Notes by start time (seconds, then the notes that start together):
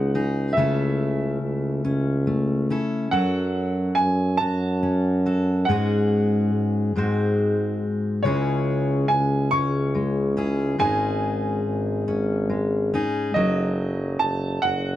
Already playing: C#2 C#3 G#3 D#4 G#4 F#5
0.15 D#4 G#4
0.53 C#3 E5
0.57 C#2 A3 C#4 E4 A4
1.42 C#2
1.84 C#2 C#4
2.27 A3
2.70 C#4 E4 A4
3.11 F#2 F#3 A4 F#5
3.95 F#2 G#5
4.37 F#2 F#4 A5
4.83 C#4
5.26 F#4 A4
5.65 G#2 G#3 F#5
5.70 C#4 F#4 G#4
6.53 G#2
6.96 G#2 G#3 C4 F#4 C5
8.23 C#2 C#3 G#3 C#4 E4 C#5
8.27 G#4
9.08 C#2 G#5
9.51 C#2 C#4 C#6
9.95 G#3
10.37 C#4 E4 G#4
10.78 G#1 G#2 G#3 C#4 D#4 G#4 G#5
11.65 G#1
12.07 G#1 C#4
12.50 G#3
12.94 C#4 D#4 G#4
13.34 F#1 F#3 A4 D#5
14.19 F#1 A5
14.62 F#1 F#4 F#5